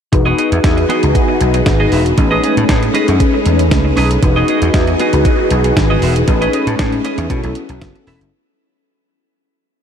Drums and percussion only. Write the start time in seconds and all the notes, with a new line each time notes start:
0.13 kick, closed hi-hat
0.39 closed hi-hat
0.52 closed hi-hat
0.64 kick, snare, closed hi-hat
0.78 closed hi-hat
0.90 closed hi-hat
1.03 closed hi-hat
1.15 kick, closed hi-hat
1.41 closed hi-hat
1.54 closed hi-hat
1.66 kick, snare, closed hi-hat
1.92 open hi-hat
2.06 closed hi-hat
2.18 kick, closed hi-hat
2.44 closed hi-hat
2.57 closed hi-hat
2.69 kick, snare, closed hi-hat
2.83 closed hi-hat
2.95 closed hi-hat
3.08 closed hi-hat
3.20 kick, closed hi-hat
3.46 closed hi-hat
3.59 closed hi-hat
3.71 kick, snare, closed hi-hat
3.97 open hi-hat
4.11 closed hi-hat
4.23 kick, closed hi-hat
4.48 closed hi-hat
4.62 closed hi-hat
4.74 kick, snare, closed hi-hat
4.87 closed hi-hat
5.00 closed hi-hat
5.13 closed hi-hat
5.25 kick, closed hi-hat
5.51 closed hi-hat
5.64 closed hi-hat
5.77 kick, snare, closed hi-hat
6.02 open hi-hat
6.16 closed hi-hat
6.28 kick, closed hi-hat
6.42 closed hi-hat
6.53 closed hi-hat
6.67 closed hi-hat
6.79 kick, snare, closed hi-hat
6.92 closed hi-hat
7.05 closed hi-hat
7.18 closed hi-hat
7.30 kick, closed hi-hat
7.44 closed hi-hat
7.55 closed hi-hat
7.69 closed hi-hat
7.82 kick, snare, closed hi-hat
7.96 closed hi-hat
8.07 open hi-hat
8.21 closed hi-hat